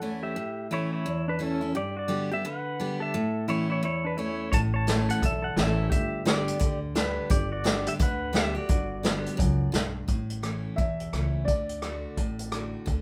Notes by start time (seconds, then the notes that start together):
Already playing: E2 A4 F#5
0.02 E3 A3 C#4 E4
0.23 G4 E5
0.36 A2
0.71 E3 A3 C#4 E4 C#5
0.93 E4 C#5
1.06 E2
1.28 D4 B4
1.39 E3 A3 C#4 E4
1.43 A4
1.61 C#4 E4
1.75 G2 G4 D5
1.97 F#4 D5
2.08 D3 G3 B3 G4
2.32 B3 G4 E5
2.45 D3 B4 F#5
2.80 D3 G3 B3 G4
3.00 A4 E5
3.14 A2
3.48 E3 A3 C#4 E4 C#5
3.70 E4 C#5
3.83 E2 E4 C#5
4.04 D4 B4
4.17 E3 A3 C#4 E4 C#5
4.52 A1 A2 C#5 A5, kick, closed hi-hat
4.74 C#5 A5
4.87 E3 A3 C#4 E4, snare, closed hi-hat
5.09 A4 F#5, closed hi-hat
5.22 B1 E2 A4 E5, kick, closed hi-hat
5.42 A4 F#5
5.56 A1 E3 A3 C#4 E4 A4 E5, snare, closed hi-hat
5.90 G1 G2 G4 E5, kick, closed hi-hat
6.25 D3 G3 B3 G4 D5, snare, closed hi-hat
6.48 closed hi-hat
6.59 D2 D3, kick, closed hi-hat
6.95 D3 G3 B3 D4 G4 B4, snare, closed hi-hat
7.30 G1 G2 G4 D5, kick, closed hi-hat
7.52 F#4 D5
7.64 D3 G3 B3 G4, snare, closed hi-hat
7.86 G4 E5, closed hi-hat
7.99 D2 D3 B4 F#5, kick, closed hi-hat
8.33 D3 G3 B3 G4 E5, snare, closed hi-hat
8.55 B3 F#4 G4 D5
8.69 G1 G2, kick, closed hi-hat
9.03 D3 G3 B3 G4, snare, closed hi-hat
9.26 closed hi-hat
9.37 C#2 F#2, kick, closed hi-hat
9.72 B1 G2, snare, closed hi-hat
10.08 A1 A2, kick, closed hi-hat
10.30 closed hi-hat
10.43 E3 A3 C#4 E4, cross-stick, closed hi-hat
10.76 B1 E2 E5, kick, closed hi-hat
11.00 closed hi-hat
11.13 C#2 E3 A3 C#4 E4, cross-stick, closed hi-hat
11.45 D2 D3 D5, kick, closed hi-hat
11.69 closed hi-hat
11.82 D3 A3 D4 F#4, cross-stick, closed hi-hat
12.17 A1 A2, kick, closed hi-hat
12.39 closed hi-hat
12.52 D3 A3 D4 F#4, cross-stick, closed hi-hat
12.86 D2 D3, kick, closed hi-hat